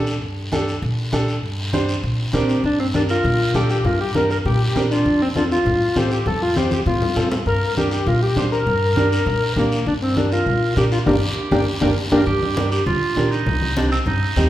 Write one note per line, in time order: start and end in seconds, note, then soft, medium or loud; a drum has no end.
0.00 0.22 A#2 medium
0.00 0.13 D4 medium
0.00 0.13 G4 medium
0.00 0.13 A4 medium
0.07 short guiro medium
0.22 0.71 G2 loud
0.22 high conga soft
0.22 long guiro medium
0.52 0.73 D4 medium
0.52 0.74 G4 medium
0.52 0.74 A4 medium
0.52 high conga medium
0.52 short guiro medium
0.68 short guiro medium
0.82 1.07 A#2 loud
0.82 high conga soft
0.82 long guiro medium
1.12 1.43 A#2 medium
1.12 1.34 D4 medium
1.12 1.34 G4 medium
1.12 1.34 A4 medium
1.12 high conga medium
1.12 short guiro medium
1.28 short guiro medium
1.43 1.91 G2 medium
1.43 high conga soft
1.43 long guiro medium
1.73 1.94 D4 medium
1.73 1.95 G4 medium
1.73 1.95 C5 medium
1.73 high conga medium
1.73 short guiro medium
1.89 short guiro medium
2.03 2.28 A#2 medium
2.03 high conga soft
2.03 long guiro medium
2.33 2.58 A#2 medium
2.33 2.62 C4 medium
2.33 2.55 D4 medium
2.33 2.55 G4 medium
2.33 2.62 G4 medium
2.33 2.55 A#4 medium
2.33 high conga medium
2.33 short guiro medium
2.49 short guiro medium
2.64 3.12 G2 medium
2.64 2.79 D4 medium
2.64 high conga soft
2.64 long guiro medium
2.80 2.86 C4 medium
2.80 2.87 C4 medium
2.94 3.15 D4 medium
2.94 3.02 D4 medium
2.94 3.15 G4 medium
2.94 3.16 A#4 medium
2.94 high conga medium
2.94 short guiro medium
3.09 3.57 F4 medium
3.09 3.52 A#4 medium
3.09 short guiro medium
3.24 3.49 A#2 medium
3.24 high conga soft
3.24 low conga medium
3.24 long guiro medium
3.54 3.79 A#2 loud
3.54 3.76 D4 medium
3.54 3.76 G4 medium
3.54 3.69 G4 medium
3.54 3.76 A4 medium
3.54 high conga medium
3.54 low conga medium
3.54 short guiro medium
3.70 3.84 G4 medium
3.70 3.84 G4 loud
3.70 short guiro medium
3.85 4.33 G2 medium
3.85 3.99 F4 loud
3.85 4.00 A#4 medium
3.85 high conga soft
3.85 low conga medium
3.85 long guiro medium
4.01 4.14 G4 medium
4.01 4.15 G4 medium
4.15 4.36 D4 medium
4.15 4.36 G4 medium
4.15 4.36 A#4 medium
4.15 4.30 A#4 medium
4.15 high conga medium
4.15 short guiro medium
4.30 4.38 A#4 medium
4.30 short guiro medium
4.45 4.69 A#2 loud
4.45 4.77 G4 loud
4.45 4.74 G4 medium
4.45 high conga soft
4.45 low conga medium
4.45 long guiro medium
4.75 5.00 A#2 medium
4.75 4.83 C4 medium
4.75 4.96 D4 medium
4.75 4.97 G4 medium
4.75 4.83 G4 medium
4.75 4.97 A#4 medium
4.75 high conga medium
4.75 short guiro medium
4.91 5.22 D4 loud
4.91 5.19 F4 medium
4.91 short guiro medium
5.06 5.54 F2 medium
5.06 high conga soft
5.06 long guiro medium
5.22 5.28 C4 medium
5.22 5.29 C4 medium
5.35 5.57 C4 medium
5.35 5.44 D4 medium
5.35 5.57 F4 medium
5.35 5.43 F4 medium
5.35 5.57 A4 medium
5.35 high conga medium
5.35 short guiro medium
5.51 5.98 F4 loud
5.51 5.94 F4 medium
5.51 short guiro medium
5.66 5.90 A2 medium
5.66 high conga soft
5.66 low conga medium
5.66 long guiro medium
5.96 6.20 A2 medium
5.96 6.17 C4 medium
5.96 6.17 F4 medium
5.96 6.11 G4 medium
5.96 6.17 A4 medium
5.96 6.11 C5 medium
5.96 high conga medium
5.96 short guiro medium
6.11 6.26 G4 medium
6.11 short guiro medium
6.26 6.74 F2 medium
6.26 6.42 A4 loud
6.26 6.41 A4 medium
6.26 high conga soft
6.26 low conga medium
6.26 long guiro medium
6.42 6.56 F4 medium
6.42 6.57 F4 medium
6.56 6.77 C4 medium
6.56 6.77 F4 medium
6.56 6.71 G4 medium
6.56 6.78 C5 medium
6.56 6.71 C5 medium
6.56 high conga medium
6.56 short guiro medium
6.71 6.79 G4 medium
6.71 high conga medium
6.71 short guiro medium
6.86 7.10 A2 loud
6.86 7.29 F4 medium
6.86 high conga medium
6.86 long guiro medium
7.02 low conga medium
7.16 7.40 A2 medium
7.16 7.37 C4 medium
7.16 7.37 F4 medium
7.16 7.38 A4 medium
7.16 low conga medium
7.16 short guiro medium
7.31 low conga medium
7.31 short guiro medium
7.46 7.94 G2 medium
7.46 7.75 A#4 loud
7.46 7.75 A#4 medium
7.46 high conga soft
7.46 long guiro medium
7.76 7.98 D4 medium
7.76 7.98 G4 medium
7.76 7.91 G4 medium
7.76 7.98 A#4 medium
7.76 high conga medium
7.76 short guiro medium
7.91 8.08 G4 medium
7.91 8.06 G4 medium
7.91 short guiro medium
8.06 8.31 A#2 loud
8.06 8.21 F4 loud
8.06 8.21 A#4 medium
8.06 high conga soft
8.06 low conga medium
8.06 long guiro medium
8.23 8.36 G4 medium
8.23 8.37 G4 medium
8.36 8.61 A#2 medium
8.36 8.58 D4 medium
8.36 8.58 G4 medium
8.36 8.44 G4 medium
8.36 8.45 G4 medium
8.36 8.58 C5 medium
8.36 high conga medium
8.36 low conga medium
8.36 short guiro medium
8.52 9.53 A#4 loud
8.52 9.54 A#4 medium
8.52 short guiro medium
8.67 9.15 G2 medium
8.67 high conga soft
8.67 low conga medium
8.67 long guiro medium
8.96 9.18 D4 medium
8.96 9.18 G4 medium
8.96 9.18 A#4 medium
8.96 high conga medium
8.96 short guiro medium
9.12 short guiro medium
9.26 9.51 A#2 medium
9.26 high conga soft
9.26 low conga medium
9.26 long guiro medium
9.56 9.81 A#2 medium
9.56 9.85 A#3 medium
9.56 9.78 D4 medium
9.56 9.78 G4 medium
9.56 9.78 A#4 medium
9.56 high conga medium
9.56 low conga medium
9.56 short guiro medium
9.72 short guiro medium
9.86 10.35 G2 medium
9.86 9.94 D4 medium
9.86 high conga soft
9.86 long guiro medium
10.02 10.16 C4 medium
10.16 10.38 D4 medium
10.16 10.31 D4 medium
10.16 10.33 D4 medium
10.16 10.38 G4 medium
10.16 10.38 A#4 medium
10.16 high conga medium
10.16 short guiro medium
10.32 10.74 F4 medium
10.32 10.74 A#4 medium
10.32 short guiro medium
10.46 10.71 A#2 medium
10.46 high conga soft
10.46 low conga medium
10.46 long guiro medium
10.76 11.01 A#2 loud
10.76 10.98 D4 medium
10.76 10.98 G4 medium
10.76 10.84 G4 medium
10.76 10.85 G4 medium
10.76 10.98 A#4 medium
10.76 high conga medium
10.76 short guiro medium
10.92 10.99 F4 medium
10.92 short guiro medium
11.06 11.18 G1 medium
11.06 11.16 A#3 medium
11.06 11.16 D4 medium
11.06 11.17 D4 medium
11.06 11.16 G4 medium
11.06 12.08 G4 medium
11.06 11.17 G4 medium
11.06 11.17 A#4 loud
11.06 high conga loud
11.06 long guiro medium
11.51 11.63 G1 medium
11.51 11.62 A#3 medium
11.51 11.62 D4 medium
11.51 11.62 D4 loud
11.51 11.61 G4 loud
11.51 11.62 G4 loud
11.51 11.62 A#4 medium
11.51 high conga loud
11.51 long guiro loud
11.81 11.93 G1 medium
11.81 11.91 A#3 medium
11.81 11.91 D4 medium
11.81 11.92 D4 medium
11.81 11.91 G4 loud
11.81 11.92 G4 medium
11.81 11.92 A#4 loud
11.81 high conga medium
11.81 long guiro loud
12.12 12.23 G1 medium
12.12 12.22 A#3 medium
12.12 12.21 D4 loud
12.12 12.22 D4 medium
12.12 12.22 G4 loud
12.12 12.21 A#4 medium
12.12 high conga medium
12.12 long guiro medium
12.17 12.21 A#4 medium
12.26 12.75 G2 loud
12.26 12.69 G4 medium
12.26 high conga soft
12.26 long guiro medium
12.42 high conga medium
12.56 12.78 D4 medium
12.56 12.78 G4 medium
12.56 12.78 A#4 medium
12.56 high conga loud
12.56 short guiro medium
12.72 12.86 G4 medium
12.72 short guiro medium
12.86 12.99 D2 loud
12.86 13.33 F4 loud
12.86 high conga soft
12.86 low conga medium
12.86 long guiro medium
13.16 13.41 A#2 medium
13.16 13.38 D4 medium
13.16 13.38 G4 medium
13.16 13.38 A#4 medium
13.16 high conga medium
13.16 short guiro medium
13.31 13.76 D#4 loud
13.31 short guiro medium
13.46 13.95 C2 loud
13.46 high conga soft
13.46 low conga medium
13.46 long guiro medium
13.62 high conga medium
13.76 13.98 C4 medium
13.76 13.91 D4 medium
13.76 13.98 D#4 medium
13.76 13.98 G4 medium
13.76 high conga loud
13.76 short guiro medium
13.92 13.98 C4 medium
13.92 short guiro medium
14.06 14.18 G2 loud
14.06 14.49 D#4 medium
14.06 high conga soft
14.06 low conga medium
14.06 long guiro medium
14.36 14.49 D#2 loud
14.36 14.49 C4 medium
14.36 14.49 D#4 medium
14.36 14.49 G4 medium
14.36 high conga medium
14.36 low conga medium
14.36 short guiro medium